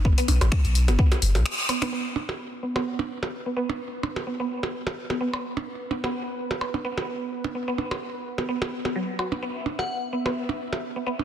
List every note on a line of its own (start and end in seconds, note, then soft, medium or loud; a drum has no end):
0.00 0.14 F#1 medium
0.05 0.08 B3 medium
0.05 kick loud
0.18 0.22 B3 loud
0.18 closed hi-hat medium
0.28 0.39 B1 loud
0.28 open hi-hat medium
0.28 percussion blips medium
0.41 0.50 A1 medium
0.41 closed hi-hat soft
0.41 percussion blips medium
0.52 finger snap loud
0.52 kick loud
0.65 0.90 B1 medium
0.65 closed hi-hat soft
0.75 open hi-hat medium
0.88 0.97 F#1 loud
0.88 0.91 B3 medium
0.88 closed hi-hat soft
0.88 percussion blips medium
0.99 1.04 B3 loud
0.99 kick loud
1.12 closed hi-hat soft
1.12 percussion blips medium
1.22 1.37 F#1 loud
1.22 open hi-hat medium
1.35 1.44 B1 medium
1.35 open hi-hat soft
1.35 percussion blips medium
1.46 finger snap loud
1.69 1.72 B3 medium
1.69 open hi-hat medium
1.69 percussion blips medium
1.82 1.86 B3 loud
1.82 finger snap medium
1.82 open hi-hat soft
1.82 percussion blips medium
1.92 11.24 B3 medium
1.92 1.98 B3 medium
1.92 9.45 B4 medium
2.16 percussion blips medium
2.29 percussion blips soft
2.63 2.66 B3 medium
2.76 2.80 B3 loud
2.76 percussion blips soft
2.76 percussion blips medium
2.99 percussion blips medium
3.23 percussion blips soft
3.46 3.49 B3 medium
3.57 3.62 B3 loud
3.70 percussion blips medium
4.03 percussion blips medium
4.16 percussion blips soft
4.27 4.30 B3 medium
4.40 4.44 B3 loud
4.63 percussion blips soft
4.87 percussion blips medium
5.10 5.13 B3 medium
5.10 percussion blips medium
5.21 5.26 B3 medium
5.33 percussion blips medium
5.57 percussion blips medium
5.91 5.94 B3 medium
5.91 percussion blips medium
6.04 6.08 B3 loud
6.04 percussion blips soft
6.51 percussion blips soft
6.61 percussion blips medium
6.74 6.77 B3 medium
6.74 percussion blips medium
6.85 6.90 B3 loud
6.98 percussion blips soft
7.44 percussion blips medium
7.55 7.58 B3 medium
7.68 7.72 B3 loud
7.78 percussion blips medium
7.91 percussion blips soft
7.91 percussion blips medium
8.38 8.41 B3 medium
8.38 percussion blips soft
8.49 8.54 B3 medium
8.62 percussion blips medium
8.85 8.89 B3 medium
8.85 percussion blips soft
8.96 9.01 F#3 medium
9.19 9.27 F#4 medium
9.19 percussion blips medium
9.32 9.36 B3 medium
9.32 percussion blips medium
9.42 9.48 B3 loud
9.42 11.24 E5 medium
9.66 percussion blips medium
9.79 9.94 F#5 medium
9.79 percussion blips soft
10.13 10.16 B3 medium
10.26 10.30 B3 loud
10.26 percussion blips soft
10.26 percussion blips medium
10.49 percussion blips medium
10.73 percussion blips soft
10.96 10.99 B3 medium
11.07 11.12 B3 loud
11.19 percussion blips medium